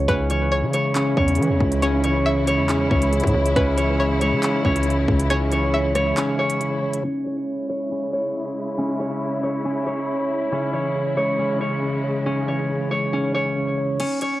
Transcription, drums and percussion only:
0.08 kick, closed hi-hat
0.30 closed hi-hat
0.73 closed hi-hat
0.95 clap, closed hi-hat
1.17 kick
1.28 closed hi-hat
1.35 closed hi-hat
1.42 closed hi-hat
1.60 kick
1.72 closed hi-hat
1.82 closed hi-hat
2.04 closed hi-hat
2.47 closed hi-hat
2.69 clap, closed hi-hat
2.91 kick
3.02 closed hi-hat
3.13 closed hi-hat
3.20 kick, closed hi-hat
3.27 closed hi-hat
3.46 closed hi-hat
3.56 kick, closed hi-hat
3.78 closed hi-hat
4.21 closed hi-hat
4.43 clap, closed hi-hat
4.65 kick
4.76 closed hi-hat
4.83 closed hi-hat
4.90 closed hi-hat
5.08 kick
5.20 closed hi-hat
5.30 closed hi-hat
5.52 closed hi-hat
5.95 cross-stick, closed hi-hat
6.17 clap, closed hi-hat
6.50 closed hi-hat
6.61 closed hi-hat
6.93 closed hi-hat
14.00 closed hi-hat, crash
14.21 closed hi-hat

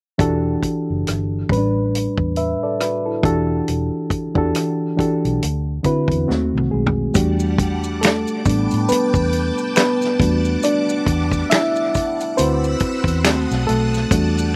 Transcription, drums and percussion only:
0.19 kick, closed hi-hat
0.63 kick, closed hi-hat
1.07 cross-stick, closed hi-hat
1.49 kick, closed hi-hat
1.95 closed hi-hat
2.18 kick
2.36 closed hi-hat
2.81 cross-stick, closed hi-hat
3.23 kick, closed hi-hat
3.68 closed hi-hat
4.10 kick, closed hi-hat
4.35 kick
4.55 cross-stick, closed hi-hat
4.99 kick, closed hi-hat
5.25 closed hi-hat
5.43 closed hi-hat
5.84 kick, closed hi-hat
6.08 kick, closed hi-hat
6.30 snare
6.57 mid tom
6.87 floor tom
7.14 kick, closed hi-hat, maracas
7.40 maracas
7.58 kick, closed hi-hat
7.84 maracas
8.03 finger snap, closed hi-hat, maracas
8.05 finger snap, snare
8.27 maracas
8.45 kick, closed hi-hat, maracas
8.71 closed hi-hat, maracas
8.89 closed hi-hat, maracas
9.14 kick, maracas
9.33 closed hi-hat
9.58 maracas
9.76 finger snap, snare, closed hi-hat, maracas
10.02 snare, maracas
10.20 kick, closed hi-hat
10.45 maracas
10.63 closed hi-hat, maracas
10.89 maracas
11.06 kick, closed hi-hat
11.31 kick, maracas
11.51 finger snap, snare, closed hi-hat, maracas
11.76 maracas
11.95 kick, closed hi-hat, maracas
12.20 closed hi-hat, maracas
12.38 closed hi-hat, maracas
12.64 maracas
12.80 kick, closed hi-hat
13.04 kick, closed hi-hat, maracas
13.25 finger snap, snare, closed hi-hat, maracas
13.51 snare, maracas
13.69 closed hi-hat
13.94 snare, maracas
14.11 kick, closed hi-hat, maracas
14.38 maracas

